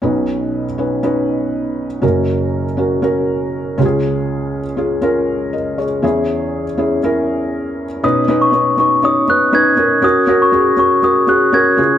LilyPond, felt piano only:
<<
  \new Staff \with { instrumentName = "Felt piano" } { \time 4/4 \key b \major \tempo 4 = 120 << { r1 | r1 | r2. <ais' dis''>8 <gis' cis''>8~ | <gis' cis''>8 r2. r8 |
r1 | r1 | } \\ { <cis' dis' b'>4 r8 <cis' dis' b'>8 <cis' dis' b'>4. r8 | <cis' fis' ais'>4 r8 <cis' fis' ais'>8 <cis' fis' ais'>4. <cis' eis' g' gis'>8~ | <cis' eis' g' gis'>4 r8 <cis' eis' gis'>8 <cis' eis' ais'>4. r8 | <cis' e' gis'>4 r8 <cis' e' gis'>8 <cis' e' ais'>4. r8 |
<cis' dis' b'>8 <cis' dis' b'>8 <cis' dis' b'>8 <cis' dis' b'>8 <cis' dis' cis''>8 <cis' dis' b'>8 <cis' dis' b'>8 <cis' dis' ais'>8 | <cis' fis' ais'>8 <cis' fis' ais'>8 <cis' fis' gis'>8 <cis' fis' ais'>8 <cis' fis' ais'>8 <cis' fis' gis'>8 <cis' fis' ais'>8 <cis' eis' gis'>8 | } >> }
  \new Staff \with { instrumentName = "Felt piano" } { \clef bass \time 4/4 \key b \major <b,, b,>1 | <fis,, fis,>2.~ <fis,, fis,>8 <cis, cis>8~ | <cis, cis>2.~ <cis, cis>8 r8 | <e, e>1 |
b,4. r2 r8 | r2. r8 cis8 | }
>>